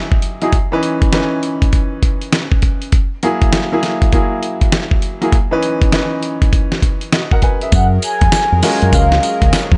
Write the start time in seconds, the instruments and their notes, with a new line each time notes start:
Already playing: grand piano F#3 D#4 E4 G4 G#4
0.12 kick
0.22 closed hi-hat
0.42 grand piano F#3 D#4 E4 G#4, closed hi-hat
0.52 kick, closed hi-hat
0.72 grand piano E3 C#4 D#4 B4
0.83 closed hi-hat
1.02 kick, closed hi-hat
1.13 grand piano E3 C#4 D#4 B4, snare, closed hi-hat
1.43 closed hi-hat
1.62 kick, closed hi-hat
1.73 kick, closed hi-hat
2.03 kick, closed hi-hat
2.22 closed hi-hat
2.32 snare, closed hi-hat
2.52 kick
2.62 kick, closed hi-hat
2.82 closed hi-hat
2.92 kick, closed hi-hat
3.23 grand piano F#3 A#3 E4 G#4, closed hi-hat
3.42 kick, closed hi-hat
3.53 snare, closed hi-hat
3.72 grand piano F#3 A#3 E4 G#4
3.83 snare, closed hi-hat
4.02 kick, closed hi-hat
4.12 grand piano F#3 A#3 E4 G#4, kick, closed hi-hat
4.43 closed hi-hat
4.61 kick, closed hi-hat
4.72 snare, closed hi-hat
4.91 kick
5.02 closed hi-hat
5.21 grand piano F#3 A#3 E4 G#4, closed hi-hat
5.32 kick, closed hi-hat
5.51 grand piano E3 C#4 D#4 B4
5.63 closed hi-hat
5.82 kick, closed hi-hat
5.92 grand piano E3 C#4 D#4 B4, snare, closed hi-hat
6.23 closed hi-hat
6.42 kick, closed hi-hat
6.53 kick, closed hi-hat
6.72 snare
6.82 kick, closed hi-hat
7.01 closed hi-hat
7.12 grand piano F#4 D#5, snare, closed hi-hat
7.31 grand piano A#4 F#5, kick
7.42 grand piano B4 G#5, kick, closed hi-hat
7.61 grand piano G#4 E5, closed hi-hat
7.72 fingered electric bass F#2, analog synth pad F#3 G#4 A#4, soft synth lead F#5, kick, closed hi-hat, tambourine
8.02 soft synth lead G#5, closed hi-hat, tambourine
8.21 fingered electric bass F2, kick, closed hi-hat
8.32 muted fingered electric bass stroke, snare, closed hi-hat, tambourine
8.52 fingered electric bass F2
8.63 grand piano G#3 C#4 F4 F#4 A#4, soft synth lead G#5, snare, open hi-hat, tambourine
8.82 fingered electric bass F#2, closed hi-hat
8.93 fingered electric bass C#2, soft synth lead F5, kick, closed hi-hat, tambourine
9.12 snare
9.23 closed hi-hat, tambourine
9.42 fingered electric bass C#2, kick, closed hi-hat
9.53 muted fingered electric bass stroke, snare, closed hi-hat, tambourine
9.72 fingered electric bass F2, kick